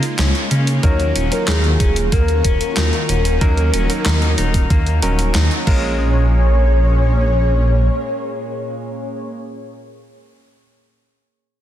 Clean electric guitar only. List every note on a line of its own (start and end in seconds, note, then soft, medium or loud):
0.19 0.49 C#4 medium
0.51 0.82 C#4 medium
0.83 1.12 A#3 medium
1.16 1.33 C#4 medium
1.48 1.65 D#4 medium
1.80 1.97 C#4 loud
2.12 2.41 A#3 medium
2.45 2.75 C#4 loud
2.77 3.05 D#4 medium
3.09 3.40 C#4 medium
3.41 3.70 A#3 medium
3.74 3.91 C#4 medium
4.06 4.36 D#4 medium
4.38 4.69 D#4 medium
4.70 4.99 A#3 medium
5.03 5.20 C#4 medium
5.35 5.52 D#4 medium
5.67 6.28 G#3 medium